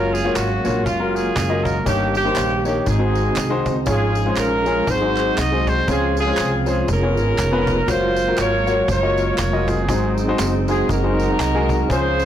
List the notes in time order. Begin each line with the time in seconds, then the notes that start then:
Already playing: F#1 F#3 G#3 A#3 C#4 F4 F#4 A#4 C#5
0.14 G#4, tambourine
0.24 A#3 F4 F#4 C#5
0.35 G#1 A#3 C#4 F#4, cajon slap, clap, tambourine
0.65 A#1 A#3 F4 F#4 C#5, tambourine
0.75 cajon slap
0.85 F#1 A#3 C#4 F4, cajon bass, tambourine
1.00 A#3 F4 F#4 A#4
1.15 C#4 F4 G#4, cajon slap, tambourine
1.36 F#1, cajon bass, cajon slap, clap, tambourine
1.49 A#3 F4 F#4 D#5
1.64 A#4, cajon bass, tambourine
1.76 cajon slap
1.85 G1 G2 D#3 A#3 C#4 D#4 G4 C#5, cajon bass, tambourine
2.15 A#3 C#4 G4, tambourine
2.25 A#3 D#4 G4 C5
2.36 A#1, cajon slap, clap, tambourine
2.65 A#3 D#4 G4 C#5, cajon slap, tambourine
2.86 G#1 G#2 G#3 C4 D#4 F#4 G#4, cajon bass, tambourine
2.99 G#3 D#4 F#4 C5
3.15 cajon slap, tambourine
3.36 C2, cajon bass, cajon slap, clap, tambourine
3.50 G#3 D#4 F#4 C5
3.66 C#2, cajon bass, tambourine
3.76 cajon slap
3.86 G#1 G#2 F3 G#3 C#4 F4 G#4 C#5, cajon bass, tambourine
4.15 tambourine
4.26 G#3 C#4 F4 C5
4.37 A#1 C#4 F4 A#4, cajon slap, clap, tambourine
4.66 G#3 C#4 F4 G#4, tambourine
4.75 cajon slap
4.87 G#1 G#2 F#3 C4 D#4 F#4 G#4 C5, cajon bass, tambourine
5.01 G#3 D#4 F#4 C5
5.17 cajon slap, clap, tambourine
5.38 C2 D#5, cajon bass, cajon slap, clap, tambourine
5.52 G#3 D#4 F#4 C5
5.67 C5, cajon bass, tambourine
5.88 C#2 C#3 F3 G#3 C4 C#4 F4 G#4 C5, cajon bass, tambourine
6.17 C4 F4 G#4, cajon slap, tambourine
6.27 G#3 C#4 F4 C5
6.37 C2, cajon slap, clap, tambourine
6.66 G#3 C#4 F4 G#4 C5, cajon slap, tambourine
6.88 F1 G#3 B3 A#4, cajon bass, tambourine
6.92 C#4
7.02 B3 F4 G#4 C#5
7.17 G#1, tambourine
7.38 F1, cajon bass, cajon slap, clap, tambourine
7.52 B3 F4 G#4 B4
7.67 cajon bass, tambourine
7.77 cajon slap
7.87 F#1 F#3 A#3 F4 F#4 C5 C#5, cajon bass, tambourine
7.91 F4
8.16 cajon slap, tambourine
8.28 A#3 F4 F#4 A#4
8.37 G#1 F4 C#5, cajon slap, clap, tambourine
8.42 A#4
8.66 A#3 F4 F#4 C#5, tambourine
8.77 cajon slap
8.88 F#1 F4 A#4 C#5, cajon bass, tambourine
9.02 F#3 A#3 F4 D#5
9.17 cajon slap, tambourine
9.38 F1 C#5, cajon bass, cajon slap, clap, tambourine
9.53 A#3 F4 F#4 D#5
9.68 C4 D#4 G#4, cajon bass, tambourine
9.77 cajon slap
9.89 G#1 G#2 F#3 G#3 C4 D#4 F#4 G#4 C5, cajon bass, tambourine
10.18 cajon slap, tambourine
10.28 G#3 D#4 F#4 C5
10.39 F#1, cajon slap, clap, tambourine
10.68 G#3 D#4 F#4 G#4 C5, tambourine
10.78 cajon slap
10.89 F#1 D#4 F#4 A#4, cajon bass, tambourine
11.03 G#3 D#4 F#4 C5
11.18 cajon slap, tambourine
11.39 C2, cajon bass, cajon slap, clap, tambourine
11.55 G#3 D#4 F#4 G#4
11.69 cajon bass, tambourine
11.89 C#2 C#3 F3 G#3 C#4 F4 G#4 C5, cajon bass, tambourine
12.19 cajon slap, tambourine